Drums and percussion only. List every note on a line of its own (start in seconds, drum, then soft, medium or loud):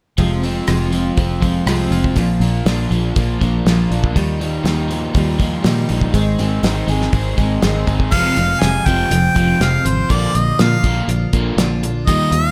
0.18 kick medium
0.18 open hi-hat medium
0.44 open hi-hat soft
0.68 cross-stick medium
0.68 open hi-hat medium
0.93 open hi-hat soft
1.17 kick loud
1.17 open hi-hat medium
1.42 kick medium
1.42 open hi-hat medium
1.67 cross-stick medium
1.67 open hi-hat medium
1.92 open hi-hat soft
2.04 kick medium
2.16 kick medium
2.16 open hi-hat medium
2.41 open hi-hat soft
2.66 snare medium
2.66 open hi-hat medium
2.92 open hi-hat soft
3.16 kick loud
3.16 open hi-hat medium
3.41 kick medium
3.41 open hi-hat soft
3.66 snare loud
3.66 open hi-hat medium
3.92 open hi-hat soft
4.04 kick medium
4.16 kick medium
4.16 open hi-hat medium
4.41 open hi-hat soft
4.66 snare medium
4.66 open hi-hat medium
4.91 open hi-hat soft
5.15 kick loud
5.15 open hi-hat medium
5.39 kick medium
5.39 open hi-hat soft
5.64 snare medium
5.64 open hi-hat medium
5.89 open hi-hat soft
6.01 kick medium
6.14 kick medium
6.14 open hi-hat medium
6.39 open hi-hat soft
6.64 snare medium
6.64 open hi-hat medium
6.88 open hi-hat soft
7.01 snare soft
7.13 kick loud
7.13 open hi-hat medium
7.38 kick medium
7.38 open hi-hat soft
7.62 snare loud
7.62 open hi-hat medium
7.87 kick medium
7.87 open hi-hat soft
8.00 kick medium
8.12 kick loud
8.12 crash medium
8.36 closed hi-hat medium
8.61 snare medium
8.61 closed hi-hat medium
8.86 kick medium
8.86 closed hi-hat medium
9.11 closed hi-hat medium
9.36 kick medium
9.36 closed hi-hat medium
9.61 snare loud
9.61 closed hi-hat medium
9.86 closed hi-hat medium
10.10 kick medium
10.10 closed hi-hat medium
10.35 closed hi-hat medium
10.59 snare medium
10.59 closed hi-hat medium
10.84 kick medium
10.84 closed hi-hat medium
11.09 closed hi-hat medium
11.33 kick medium
11.33 closed hi-hat medium
11.58 snare loud
11.58 closed hi-hat medium
11.84 closed hi-hat medium
12.07 kick loud
12.07 closed hi-hat medium
12.32 closed hi-hat medium